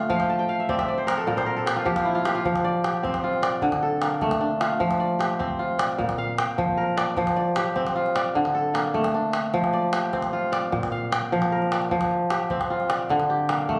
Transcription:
Already playing: kora D3 A3 A#3 C4 D4 F4 A4
0.10 kora F3 F5, calabash thump
0.19 kora G5, calabash click
0.30 kora A5
0.39 kora G5
0.49 kora F5
0.60 kora E5
0.69 kora C4 D5, calabash thump
0.78 kora E5, calabash click
0.88 kora D5
0.98 kora C5
1.07 kora A#4, calabash click
1.17 kora A4
1.27 kora A#2 A#4, calabash thump
1.37 kora C5, calabash click
1.46 kora A#4
1.56 kora A4, calabash click
1.66 kora G4, calabash click
1.76 kora F4
1.85 kora F3 G4, calabash thump
1.96 kora F4, calabash click
2.05 kora E4
2.15 kora F4, calabash click
2.25 kora G4, calabash click
2.35 kora F4, calabash click
2.45 kora F3, calabash thump
2.56 calabash click
2.64 kora D5, calabash click
2.84 kora G4, calabash click
3.03 kora C4, calabash thump, calabash click
3.14 calabash click
3.24 kora F4
3.34 calabash click
3.42 kora D5, calabash click
3.62 kora D3, calabash thump
3.72 calabash click
3.83 kora A4
4.02 kora A#3, calabash click
4.21 kora A3, calabash thump, calabash click
4.31 calabash click
4.41 kora D4
4.61 kora F4, calabash click
4.80 kora F3, calabash thump
4.91 calabash click
5.00 kora D5, calabash click
5.19 kora G4, calabash click
5.39 kora C4, calabash thump, calabash click
5.59 kora F4
5.79 kora D5, calabash click
5.98 kora A#2, calabash thump
6.09 calabash click
6.18 kora F5
6.38 kora G5, calabash click
6.58 kora F3, calabash thump, calabash click
6.77 kora A#4
6.97 kora D5, calabash click
7.17 kora F3, calabash thump
7.27 calabash click
7.36 kora D5, calabash click
7.56 kora G4, calabash click
7.76 kora C4, calabash thump, calabash click
7.87 calabash click
7.96 kora F4
8.06 calabash click
8.16 kora D5, calabash click
8.35 kora D3, calabash thump
8.45 calabash click
8.55 kora A4
8.74 kora A#3, calabash click
8.94 kora A3, calabash thump, calabash click
9.04 calabash click
9.14 kora D4
9.33 calabash click
9.54 kora F3, calabash thump, calabash click
9.64 calabash click
9.73 kora D5, calabash click
9.93 kora G4, calabash click
10.13 kora C4, calabash thump
10.22 calabash click
10.33 kora F4
10.52 kora D5, calabash click
10.63 calabash click
10.72 kora A#2, calabash thump, calabash click
10.83 calabash click
10.92 kora F5
11.12 kora G5, calabash click
11.32 kora F3, calabash thump
11.42 calabash click
11.52 kora A#4
11.62 calabash click
11.72 kora D5, calabash click
11.82 calabash click
11.91 kora F3, calabash thump
12.01 calabash click
12.11 calabash click
12.30 kora G4, calabash click
12.50 kora C4, calabash thump, calabash click
12.61 calabash click
12.70 kora F4
12.80 calabash click
12.90 kora D5, calabash click
13.09 kora D3, calabash thump
13.20 calabash click
13.30 kora G4
13.49 kora A#3, calabash click
13.69 kora A3, calabash thump, calabash click

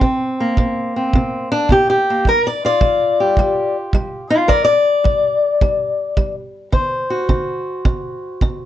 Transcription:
0.01 steel-string acoustic guitar C3 C4, kick
0.40 steel-string acoustic guitar A#3
0.57 steel-string acoustic guitar C3, kick
0.96 steel-string acoustic guitar C4
1.14 steel-string acoustic guitar C3, kick
1.52 steel-string acoustic guitar D4
1.69 steel-string acoustic guitar C3 G4, kick
1.90 steel-string acoustic guitar G4
2.10 steel-string acoustic guitar A#3
2.25 steel-string acoustic guitar G3 A#4, kick
2.47 steel-string acoustic guitar D5
2.65 steel-string acoustic guitar F4 D5
2.81 steel-string acoustic guitar G3, kick
3.20 steel-string acoustic guitar G4
3.37 steel-string acoustic guitar G3, kick
3.93 steel-string acoustic guitar G3, kick
4.30 steel-string acoustic guitar F4 A#4
4.48 steel-string acoustic guitar G3 A#4 D5, kick
4.64 steel-string acoustic guitar D5
5.04 steel-string acoustic guitar G3, kick
5.61 steel-string acoustic guitar G3, kick
6.17 steel-string acoustic guitar G3, kick
6.72 steel-string acoustic guitar D3 C5, kick
7.10 steel-string acoustic guitar F#4
7.29 steel-string acoustic guitar D3, kick
7.85 steel-string acoustic guitar D3, kick
8.41 steel-string acoustic guitar D3, kick

